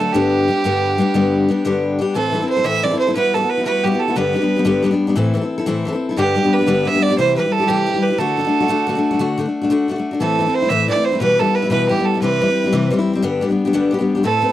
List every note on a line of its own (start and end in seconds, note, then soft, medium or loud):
0.00 0.14 D3 medium
0.00 0.14 F#3 medium
0.00 0.15 A3 medium
0.00 0.14 D4 medium
0.00 0.15 F#4 medium
0.00 0.14 A4 medium
0.13 0.48 G2 medium
0.13 0.49 D3 medium
0.13 0.47 G3 medium
0.13 0.48 B3 medium
0.13 0.49 D4 medium
0.13 1.83 G4 medium
0.13 0.49 G4 medium
0.48 0.64 G3 medium
0.48 0.64 B3 soft
0.48 0.64 D4 medium
0.48 0.65 G4 medium
0.64 0.99 G2 medium
0.64 0.99 D3 medium
0.64 0.97 G3 medium
0.64 0.98 B3 medium
0.64 0.99 D4 medium
0.64 1.00 G4 medium
0.98 1.14 G3 medium
0.98 1.14 B3 medium
0.98 1.15 D4 medium
0.98 1.15 G4 medium
1.14 1.49 G2 medium
1.14 1.49 D3 medium
1.14 1.47 G3 medium
1.14 1.49 B3 medium
1.14 1.49 D4 medium
1.14 1.50 G4 medium
1.48 1.64 G3 medium
1.48 1.65 B3 medium
1.48 1.66 D4 medium
1.48 1.66 G4 medium
1.65 1.99 G2 medium
1.65 1.99 D3 medium
1.65 1.97 G3 medium
1.65 1.98 B3 medium
1.65 2.00 D4 medium
1.65 2.00 G4 medium
1.99 2.15 G3 medium
1.99 2.15 B3 medium
1.99 2.16 D4 medium
1.99 2.16 G4 medium
2.14 2.33 A2 medium
2.14 2.31 E3 medium
2.14 2.32 C4 medium
2.14 2.33 E4 medium
2.14 2.47 A4 medium
2.14 2.34 A4 medium
2.32 2.41 E3 medium
2.32 2.41 C4 soft
2.32 2.41 E4 medium
2.32 2.39 A4 medium
2.40 2.58 C4 soft
2.40 2.57 E4 soft
2.40 2.55 A4 soft
2.49 2.66 C5 medium
2.56 2.64 C4 soft
2.56 2.65 E4 soft
2.56 2.65 A4 medium
2.64 2.83 A2 medium
2.64 2.82 E3 medium
2.64 2.83 C4 medium
2.64 2.84 E4 medium
2.64 2.85 A4 medium
2.64 2.85 E5 loud
2.83 2.91 E3 medium
2.83 2.92 C4 medium
2.83 2.92 E4 medium
2.83 2.90 A4 medium
2.83 2.98 D5 medium
2.91 3.09 C4 soft
2.91 3.07 E4 soft
2.91 3.06 A4 medium
2.99 3.14 C5 medium
3.07 3.16 C4 soft
3.07 3.16 E4 soft
3.07 3.15 A4 soft
3.15 3.32 G3 medium
3.15 3.34 B3 medium
3.15 3.34 E4 medium
3.15 3.35 F#4 medium
3.15 3.35 B4 medium
3.34 3.42 G3 soft
3.34 3.42 B3 medium
3.34 3.42 E4 medium
3.34 3.40 F#4 medium
3.34 3.51 A4 medium
3.41 3.59 B3 soft
3.41 3.58 E4 soft
3.41 3.56 F#4 soft
3.50 3.64 B4 medium
3.57 3.65 B3 soft
3.57 3.66 E4 soft
3.57 3.65 F#4 soft
3.65 3.83 G3 medium
3.65 3.84 B3 medium
3.65 3.85 E4 medium
3.65 3.85 F#4 medium
3.65 3.85 B4 medium
3.84 3.92 G3 soft
3.84 3.93 B3 medium
3.84 3.92 E4 medium
3.84 3.90 F#4 medium
3.84 4.01 G4 medium
3.92 4.09 B3 soft
3.92 4.08 E4 soft
3.92 4.07 F#4 soft
3.99 4.18 A4 medium
4.08 4.16 B3 soft
4.08 4.16 E4 soft
4.08 4.16 F#4 soft
4.15 4.34 G2 medium
4.15 4.35 D3 medium
4.15 4.32 G3 medium
4.15 4.33 B3 medium
4.15 4.34 D4 medium
4.15 4.35 G4 medium
4.15 4.85 B4 medium
4.33 4.42 G3 soft
4.33 4.41 B3 medium
4.33 4.40 D4 medium
4.33 4.39 G4 medium
4.40 4.58 G3 soft
4.40 4.58 B3 soft
4.40 4.56 D4 medium
4.40 4.55 G4 soft
4.56 4.64 G3 medium
4.56 4.65 B3 medium
4.56 4.65 D4 medium
4.56 4.65 G4 medium
4.65 4.84 G2 medium
4.65 4.84 D3 medium
4.65 4.81 G3 medium
4.65 4.83 B3 medium
4.65 4.84 D4 medium
4.65 4.85 G4 medium
4.83 4.92 G3 medium
4.83 4.92 B3 medium
4.83 4.91 D4 medium
4.83 4.90 G4 medium
4.91 5.09 G3 soft
4.91 5.08 B3 soft
4.91 5.07 D4 medium
4.91 5.06 G4 medium
5.07 5.16 G3 soft
5.07 5.16 B3 medium
5.07 5.16 D4 medium
5.07 5.16 G4 medium
5.16 5.35 A2 medium
5.16 5.32 E3 medium
5.16 5.34 C4 medium
5.16 5.35 E4 medium
5.16 5.36 A4 medium
5.34 5.42 E3 soft
5.34 5.43 C4 medium
5.34 5.42 E4 medium
5.34 5.40 A4 medium
5.41 5.60 C4 soft
5.41 5.58 E4 soft
5.41 5.57 A4 soft
5.58 5.66 C4 soft
5.58 5.67 E4 soft
5.58 5.66 A4 medium
5.66 5.85 A2 medium
5.66 5.84 E3 medium
5.66 5.86 C4 medium
5.66 5.86 E4 medium
5.66 5.87 A4 medium
5.85 5.93 E3 medium
5.85 5.94 C4 medium
5.85 5.93 E4 medium
5.85 5.91 A4 medium
5.93 6.10 C4 soft
5.93 6.10 E4 soft
5.93 6.08 A4 soft
6.09 6.18 C4 soft
6.09 6.18 E4 soft
6.09 6.17 A4 soft
6.17 6.36 G2 medium
6.17 6.36 D3 medium
6.17 6.34 G3 medium
6.17 6.35 B3 medium
6.17 6.36 D4 medium
6.17 6.54 G4 medium
6.17 6.37 G4 medium
6.35 6.44 G3 medium
6.35 6.44 B3 medium
6.35 6.43 D4 medium
6.35 6.42 G4 medium
6.43 6.61 G3 soft
6.43 6.60 B3 soft
6.43 6.59 D4 soft
6.43 6.57 G4 soft
6.53 6.89 B4 medium
6.59 6.66 G3 soft
6.59 6.67 B3 soft
6.59 6.67 D4 soft
6.59 6.67 G4 soft
6.67 6.86 G2 medium
6.67 6.86 D3 medium
6.67 6.84 G3 medium
6.67 6.85 B3 medium
6.67 6.86 D4 medium
6.67 6.87 G4 medium
6.85 6.94 G3 soft
6.85 6.94 B3 medium
6.85 6.94 D4 medium
6.85 6.92 G4 medium
6.85 7.03 E5 medium
6.94 7.11 G3 soft
6.94 7.10 B3 soft
6.94 7.09 D4 soft
6.94 7.08 G4 medium
7.02 7.17 D5 medium
7.09 7.18 G3 soft
7.09 7.18 B3 soft
7.09 7.18 D4 medium
7.09 7.17 G4 soft
7.18 7.37 C3 medium
7.18 7.35 E3 medium
7.18 7.37 G3 medium
7.18 7.38 E4 medium
7.18 7.38 G4 medium
7.18 7.35 C5 medium
7.36 7.44 E3 medium
7.36 7.45 G3 medium
7.36 7.45 E4 medium
7.36 7.43 G4 medium
7.36 7.54 B4 medium
7.44 7.62 G3 soft
7.44 7.61 E4 soft
7.44 7.59 G4 soft
7.52 7.69 A4 medium
7.60 7.68 G3 soft
7.60 7.69 E4 soft
7.60 7.68 G4 soft
7.67 7.87 C3 medium
7.67 7.85 E3 medium
7.67 7.86 G3 medium
7.67 7.88 E4 medium
7.67 8.04 G4 medium
7.67 7.88 G4 medium
7.86 7.95 E3 soft
7.86 7.95 G3 soft
7.86 7.95 E4 soft
7.86 7.93 G4 medium
7.94 8.12 G3 soft
7.94 8.10 E4 soft
7.94 8.09 G4 soft
8.02 8.20 B4 medium
8.10 8.19 G3 soft
8.10 8.19 E4 soft
8.10 8.18 G4 soft
8.18 8.36 D3 medium
8.18 8.38 A3 medium
8.18 8.38 D4 medium
8.18 8.39 F#4 medium
8.18 9.19 A4 medium
8.37 8.45 D3 soft
8.37 8.46 A3 soft
8.37 8.46 D4 medium
8.37 8.43 F#4 medium
8.45 8.62 A3 soft
8.45 8.61 D4 medium
8.45 8.59 F#4 medium
8.60 8.68 A3 soft
8.60 8.69 D4 medium
8.60 8.69 F#4 medium
8.68 8.85 D3 medium
8.68 8.87 A3 medium
8.68 8.88 D4 medium
8.68 8.89 F#4 medium
8.87 8.95 D3 medium
8.87 8.96 A3 medium
8.87 8.96 D4 medium
8.87 8.94 F#4 medium
8.95 9.13 A3 soft
8.95 9.11 D4 medium
8.95 9.10 F#4 medium
9.11 9.19 A3 soft
9.11 9.20 D4 soft
9.11 9.19 F#4 medium
9.19 9.36 D3 medium
9.19 9.37 A3 medium
9.19 9.38 D4 medium
9.19 9.39 F#4 medium
9.38 9.46 D3 medium
9.38 9.46 A3 medium
9.38 9.46 D4 medium
9.38 9.44 F#4 medium
9.45 9.63 A3 soft
9.45 9.62 D4 soft
9.45 9.60 F#4 soft
9.61 9.70 A3 soft
9.61 9.71 D4 soft
9.61 9.70 F#4 soft
9.70 9.87 D3 medium
9.70 9.88 A3 medium
9.70 9.89 D4 medium
9.70 9.90 F#4 medium
9.88 9.96 D3 soft
9.88 9.97 A3 medium
9.88 9.97 D4 medium
9.88 9.95 F#4 medium
9.96 10.13 A3 soft
9.96 10.12 D4 soft
9.96 10.10 F#4 soft
10.11 10.20 A3 soft
10.11 10.21 D4 soft
10.11 10.20 F#4 soft
10.20 10.39 A2 medium
10.20 10.38 E3 medium
10.20 10.39 A3 medium
10.20 10.39 C4 medium
10.20 10.40 E4 medium
10.20 10.56 A4 medium
10.39 10.47 E3 medium
10.39 10.47 A3 medium
10.39 10.47 C4 medium
10.39 10.45 E4 soft
10.46 10.64 A3 soft
10.46 10.63 C4 soft
10.46 10.61 E4 medium
10.54 10.71 C5 medium
10.62 10.70 A3 soft
10.62 10.70 C4 soft
10.62 10.70 E4 soft
10.69 10.89 A2 medium
10.69 10.87 E3 medium
10.69 10.88 A3 medium
10.69 10.89 C4 medium
10.69 10.90 E4 medium
10.69 10.89 E5 medium
10.88 10.97 E3 medium
10.88 10.97 A3 medium
10.88 10.96 C4 medium
10.88 10.95 E4 medium
10.88 11.06 D5 medium
10.96 11.14 A3 soft
10.96 11.12 C4 soft
10.96 11.11 E4 medium
11.05 11.20 C5 medium
11.12 11.21 A3 soft
11.12 11.21 C4 soft
11.12 11.21 E4 soft
11.20 11.39 B2 medium
11.20 11.37 E3 medium
11.20 11.39 G3 medium
11.20 11.40 B3 medium
11.20 11.40 E4 medium
11.20 11.41 B4 medium
11.39 11.47 E3 medium
11.39 11.48 G3 medium
11.39 11.47 B3 soft
11.39 11.45 E4 medium
11.39 11.56 A4 medium
11.47 11.64 G3 soft
11.47 11.63 B3 soft
11.47 11.61 E4 soft
11.55 11.70 B4 medium
11.62 11.70 G3 soft
11.62 11.71 B3 soft
11.62 11.71 E4 soft
11.70 11.89 B2 medium
11.70 11.88 E3 medium
11.70 11.89 G3 medium
11.70 11.90 B3 medium
11.70 11.91 E4 medium
11.70 11.88 B4 medium
11.89 11.98 E3 medium
11.89 11.98 G3 soft
11.89 11.98 B3 medium
11.89 11.96 E4 medium
11.89 12.06 G4 medium
11.98 12.15 G3 soft
11.98 12.14 B3 soft
11.98 12.13 E4 soft
12.05 12.21 A4 medium
12.14 12.22 G3 soft
12.14 12.23 B3 soft
12.14 12.22 E4 soft
12.22 12.41 C3 medium
12.22 12.39 E3 medium
12.22 12.40 G3 medium
12.22 12.41 C4 medium
12.22 12.42 E4 medium
12.22 12.87 B4 medium
12.41 12.48 E3 soft
12.41 12.49 G3 medium
12.41 12.49 C4 soft
12.41 12.47 E4 medium
12.48 12.65 C4 soft
12.48 12.63 E4 medium
12.64 12.72 G3 soft
12.64 12.73 C4 soft
12.64 12.72 E4 medium
12.73 12.91 C3 medium
12.73 12.89 E3 medium
12.73 12.90 G3 medium
12.73 12.91 C4 medium
12.73 12.92 E4 medium
12.90 12.99 E3 medium
12.90 12.99 G3 medium
12.90 12.99 C4 medium
12.90 12.97 E4 medium
12.98 13.15 G3 soft
12.98 13.14 C4 medium
12.98 13.12 E4 medium
13.13 13.22 G3 soft
13.13 13.23 C4 medium
13.13 13.22 E4 medium
13.22 13.41 G2 medium
13.22 13.41 D3 medium
13.22 13.40 G3 medium
13.22 13.41 B3 medium
13.22 13.42 D4 medium
13.22 13.42 G4 medium
13.41 13.49 G3 soft
13.41 13.50 B3 medium
13.41 13.49 D4 medium
13.41 13.47 G4 medium
13.49 13.66 G3 soft
13.49 13.66 B3 soft
13.49 13.65 D4 soft
13.49 13.64 G4 soft
13.65 13.73 G3 soft
13.65 13.73 B3 medium
13.65 13.73 D4 medium
13.65 13.73 G4 medium
13.73 13.92 G2 medium
13.73 13.92 D3 medium
13.73 13.90 G3 medium
13.73 13.91 B3 medium
13.73 13.92 D4 medium
13.73 13.93 G4 medium
13.91 13.99 G3 medium
13.91 13.99 B3 soft
13.91 13.98 D4 medium
13.91 13.97 G4 medium
13.99 14.16 G3 soft
13.99 14.16 B3 soft
13.99 14.15 D4 soft
13.99 14.14 G4 medium
14.15 14.23 G3 soft
14.15 14.24 B3 soft
14.15 14.24 D4 soft
14.15 14.23 G4 medium
14.23 14.42 A2 medium
14.23 14.41 A3 medium
14.23 14.41 C4 medium
14.23 14.43 E4 medium
14.23 14.52 A4 medium
14.23 14.43 B4 medium
14.42 14.50 A3 medium
14.42 14.50 C4 soft
14.42 14.50 E4 soft
14.42 14.48 B4 medium
14.49 14.52 B4 soft